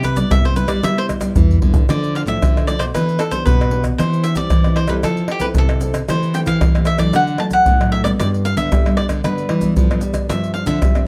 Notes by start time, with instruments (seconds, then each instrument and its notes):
Already playing: nylon-string guitar C3
0.03 cavaquinho B4, pandeiro, shaker, surdo
0.16 nylon-string guitar G3 B3 E4, cavaquinho D5, pandeiro, shaker, surdo
0.30 nylon-string guitar G2 C3, cavaquinho E5, pandeiro, tamborim, shaker, surdo
0.45 cavaquinho C5, pandeiro, shaker
0.56 nylon-string guitar G3 B3 E4, cavaquinho B4, pandeiro, shaker
0.68 nylon-string guitar G3, cavaquinho D5, pandeiro, tamborim, shaker
0.83 nylon-string guitar C3 G3 B3 E4, cavaquinho E5, pandeiro, tamborim, shaker, surdo
0.98 cavaquinho C5, pandeiro, shaker
1.09 pandeiro, tamborim, shaker, surdo
1.21 nylon-string guitar G3 B3 E4, pandeiro, tamborim, shaker, surdo
1.36 nylon-string guitar G2 E3, surdo, pandeiro, shaker
1.51 surdo, pandeiro, shaker
1.62 nylon-string guitar D3 G3 B3 E4, pandeiro, surdo
1.74 pandeiro, shaker, surdo
1.89 nylon-string guitar D3 F3 A3 D4, cavaquinho D5, pandeiro, tamborim, shaker, surdo
2.04 pandeiro, shaker
2.15 cavaquinho F5, pandeiro
2.26 nylon-string guitar A2 F3 A3 D4, cavaquinho E5, pandeiro, shaker, surdo
2.41 nylon-string guitar A2 D3, pandeiro, tamborim, shaker, surdo
2.57 pandeiro, tamborim, shaker
2.67 nylon-string guitar F3 A3 D4, cavaquinho D5, pandeiro, tamborim, shaker
2.79 nylon-string guitar B2, cavaquinho C5, pandeiro, tamborim, shaker, surdo
2.94 nylon-string guitar E3 B3 D4 G4, cavaquinho B4, pandeiro, tamborim, shaker, surdo
3.09 pandeiro, shaker
3.19 cavaquinho A4, pandeiro, tamborim, shaker
3.31 nylon-string guitar B3 D4 G4, cavaquinho C5, pandeiro, shaker, surdo
3.46 nylon-string guitar B2, cavaquinho B4, pandeiro, shaker, surdo
3.61 pandeiro, tamborim, shaker, surdo
3.71 nylon-string guitar B3 D4 G4, pandeiro
3.84 pandeiro, tamborim, shaker, surdo
3.98 nylon-string guitar E3 C4 E4 G4, cavaquinho C5, pandeiro, tamborim, shaker, surdo
4.13 pandeiro, shaker
4.24 cavaquinho E5, pandeiro, shaker
4.35 nylon-string guitar G3 C4 E4 G4, cavaquinho D5, pandeiro, shaker, surdo
4.50 nylon-string guitar E3, pandeiro, tamborim, shaker, surdo
4.64 nylon-string guitar C4 E4 G4, pandeiro, tamborim, shaker
4.76 cavaquinho C5, pandeiro, tamborim
4.88 nylon-string guitar G3 C4 E4 A4, cavaquinho B4, pandeiro, tamborim, shaker, surdo
5.03 nylon-string guitar F3, cavaquinho A4, pandeiro, tamborim, shaker, surdo
5.17 pandeiro, shaker
5.28 cavaquinho G4, pandeiro, tamborim
5.40 nylon-string guitar C4 E4 A4, cavaquinho B4, pandeiro, shaker, surdo
5.55 nylon-string guitar C3, cavaquinho A4, pandeiro, shaker, surdo
5.69 pandeiro, tamborim, shaker
5.81 nylon-string guitar C4 E4 A4, pandeiro, shaker
5.94 pandeiro, tamborim, shaker, surdo
6.08 nylon-string guitar E3 A3 C4 G4, cavaquinho C5, pandeiro, tamborim, shaker, surdo
6.23 pandeiro, shaker
6.34 nylon-string guitar A3 C4 G4, cavaquinho G5, pandeiro, shaker
6.46 nylon-string guitar E3, cavaquinho F5, pandeiro, shaker, surdo
6.61 nylon-string guitar E3, pandeiro, tamborim, shaker, surdo
6.75 nylon-string guitar A3 C4 G4, pandeiro, tamborim, shaker
6.85 cavaquinho E5, pandeiro, tamborim, shaker
6.98 nylon-string guitar E3 F#3 A3 D4, cavaquinho D5, pandeiro, tamborim, shaker, surdo
7.13 nylon-string guitar D3, cavaquinho F#5, pandeiro, tamborim, shaker, surdo
7.27 pandeiro, shaker
7.38 nylon-string guitar F#3 A3 D4, cavaquinho A5, pandeiro, tamborim
7.51 cavaquinho F#5, pandeiro, shaker, surdo
7.66 nylon-string guitar A2, pandeiro, shaker, surdo
7.80 nylon-string guitar F#3 A3 D4, pandeiro, tamborim, shaker
7.92 cavaquinho E5, pandeiro
8.04 nylon-string guitar G3 B3 D4, cavaquinho D5, pandeiro, tamborim, shaker, surdo
8.19 nylon-string guitar G2, cavaquinho D5, pandeiro, tamborim, shaker, surdo
8.34 pandeiro, shaker
8.45 cavaquinho F5, pandeiro, shaker
8.56 nylon-string guitar D3 G3 B3 D4, cavaquinho E5, pandeiro, shaker, surdo
8.72 nylon-string guitar D3 G3, pandeiro, tamborim, shaker, surdo
8.86 nylon-string guitar G3 B3 D4, pandeiro, tamborim, shaker
8.97 cavaquinho D5, pandeiro, tamborim
9.09 nylon-string guitar D3, pandeiro, tamborim, shaker, surdo
9.24 nylon-string guitar G2 D3 G3 B3 D4, cavaquinho B4, pandeiro, tamborim, shaker, surdo
9.38 pandeiro, shaker
9.49 nylon-string guitar E3, pandeiro, tamborim
9.61 nylon-string guitar G3 B3 D4, pandeiro, shaker, surdo
9.76 nylon-string guitar D3 F3, pandeiro, shaker, surdo
9.90 nylon-string guitar G3 B3 D4, pandeiro, tamborim, shaker, surdo
10.01 nylon-string guitar G3, pandeiro, shaker
10.14 pandeiro, tamborim, shaker, surdo
10.29 nylon-string guitar G2 F3 C4 D4, cavaquinho E5, pandeiro, tamborim, shaker, surdo
10.44 pandeiro, shaker
10.54 cavaquinho F5, pandeiro
10.66 nylon-string guitar D3 F3 C4 D4, cavaquinho E5, pandeiro, shaker, surdo
10.81 nylon-string guitar D3 G3, pandeiro, tamborim, shaker, surdo
10.95 nylon-string guitar F3 C4 D4, pandeiro, tamborim, shaker